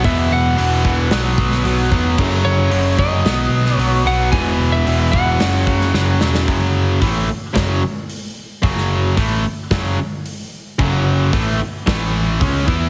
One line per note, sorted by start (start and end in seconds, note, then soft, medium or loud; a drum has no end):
0.04 0.28 E1 medium
0.04 0.55 E2 medium
0.04 0.56 B2 medium
0.04 0.56 E3 medium
0.04 0.32 E5 loud
0.04 kick loud
0.04 open hi-hat medium
0.32 0.56 E1 medium
0.32 1.35 F#5 loud
0.57 1.08 E1 medium
0.57 0.83 E2 medium
0.57 0.83 B2 loud
0.57 0.83 E3 medium
0.57 open hi-hat medium
0.84 1.09 E2 medium
0.84 1.09 B2 medium
0.84 1.10 E3 medium
0.84 kick medium
1.11 1.61 B1 medium
1.11 1.62 B2 loud
1.11 1.62 F#3 loud
1.11 1.63 B3 loud
1.11 snare loud
1.11 open hi-hat medium
1.38 kick medium
1.52 snare soft
1.63 1.89 B1 medium
1.63 1.89 B2 medium
1.63 1.90 F#3 loud
1.63 1.90 B3 medium
1.63 open hi-hat medium
1.90 2.16 E1 medium
1.90 2.16 B2 medium
1.90 2.17 F#3 medium
1.90 2.17 B3 medium
1.90 kick medium
2.17 2.43 F#1 loud
2.17 2.69 F#2 medium
2.17 2.70 C#3 loud
2.17 2.70 F#3 loud
2.17 kick medium
2.17 crash loud
2.45 2.70 F#1 medium
2.45 2.99 C#5 medium
2.70 2.97 F#1 medium
2.70 2.97 F#2 medium
2.70 2.97 C#3 medium
2.70 2.98 F#3 loud
2.70 open hi-hat medium
2.98 3.24 F#1 medium
2.98 3.24 F#2 medium
2.98 3.24 C#3 medium
2.98 3.23 F#3 loud
2.98 3.76 D#5 loud
2.98 kick medium
3.24 3.49 B1 medium
3.24 3.77 B2 medium
3.24 3.78 F#3 medium
3.24 3.79 B3 loud
3.24 snare loud
3.24 open hi-hat medium
3.49 3.76 B1 medium
3.66 snare soft
3.76 4.04 B1 medium
3.76 4.04 B2 medium
3.76 4.05 F#3 loud
3.76 4.05 B3 medium
3.76 4.10 C#5 loud
3.76 open hi-hat medium
4.05 4.33 B1 medium
4.05 4.31 B2 medium
4.05 4.32 F#3 medium
4.05 4.32 B3 loud
4.05 4.31 F#5 medium
4.32 4.58 E1 medium
4.32 4.84 E2 medium
4.32 4.85 B2 medium
4.32 4.85 E3 loud
4.32 4.74 G#5 loud
4.32 kick medium
4.32 open hi-hat soft
4.60 4.85 E1 medium
4.72 5.15 E5 loud
4.85 5.37 E1 loud
4.85 5.12 E2 medium
4.85 5.13 B2 medium
4.85 5.13 E3 medium
4.85 open hi-hat medium
5.12 5.39 E2 medium
5.12 5.39 B2 medium
5.12 5.39 E3 medium
5.12 6.16 F#5 loud
5.12 kick medium
5.39 5.91 F#1 medium
5.39 5.93 F#2 medium
5.39 5.93 C#3 loud
5.39 5.93 F#3 loud
5.39 snare loud
5.39 open hi-hat medium
5.67 kick medium
5.81 snare soft
5.94 6.19 F#1 medium
5.94 6.19 F#2 medium
5.94 6.20 C#3 medium
5.94 6.21 F#3 medium
5.94 snare medium
6.21 6.46 E1 medium
6.21 6.46 F#2 medium
6.21 6.47 C#3 medium
6.21 6.47 F#3 medium
6.21 snare medium
6.35 snare medium
6.47 6.98 F#1 medium
6.47 7.01 F#2 medium
6.47 7.01 C#3 medium
6.47 7.01 F#3 loud
6.47 kick medium
6.47 open hi-hat medium
7.01 7.27 A1 medium
7.01 7.28 A2 medium
7.01 7.28 E3 medium
7.01 7.28 A3 medium
7.01 kick loud
7.01 open hi-hat medium
7.27 muted overdriven electric guitar stroke medium
7.27 muted distorted electric guitar stroke medium
7.27 muted picked electric bass stroke soft
7.53 7.81 F#1 medium
7.53 7.81 F#2 medium
7.53 7.81 C#3 medium
7.53 7.81 F#3 medium
7.53 kick loud
7.53 snare loud
7.53 open hi-hat soft
8.10 open hi-hat medium
8.62 9.14 F#1 medium
8.62 9.16 F#2 medium
8.62 9.16 C#3 medium
8.62 9.16 F#3 medium
8.62 kick medium
8.62 open hi-hat soft
8.78 snare soft
9.17 9.42 A1 medium
9.17 9.43 A2 medium
9.17 9.44 E3 medium
9.17 9.44 A3 medium
9.17 kick loud
9.17 open hi-hat medium
9.44 muted picked electric bass stroke soft
9.44 muted distorted electric guitar stroke medium
9.44 muted overdriven electric guitar stroke soft
9.71 9.96 F#1 medium
9.71 9.97 F#2 medium
9.71 9.98 C#3 loud
9.71 9.98 F#3 medium
9.71 kick loud
9.71 snare loud
9.71 open hi-hat medium
10.26 open hi-hat medium
10.79 11.29 F#1 loud
10.79 11.32 F#2 medium
10.79 11.32 C#3 medium
10.79 11.33 F#3 medium
10.79 kick medium
10.79 crash medium
11.33 11.58 A1 loud
11.33 11.59 A2 medium
11.33 11.59 E3 medium
11.33 11.60 A3 loud
11.33 kick loud
11.33 open hi-hat medium
11.59 muted picked electric bass stroke soft
11.59 muted overdriven electric guitar stroke medium
11.59 muted distorted electric guitar stroke medium
11.87 12.38 A1 medium
11.87 12.39 A2 medium
11.87 12.39 E3 medium
11.87 12.40 A3 loud
11.87 kick loud
11.87 snare loud
11.87 open hi-hat medium
12.39 12.66 C#2 medium
12.39 12.65 C#3 medium
12.39 12.66 G#3 medium
12.39 12.67 C#4 medium
12.39 kick loud
12.39 open hi-hat medium
12.65 12.89 E2 medium
12.65 12.89 E3 loud
12.65 12.89 B3 medium
12.65 12.89 E4 medium
12.65 kick medium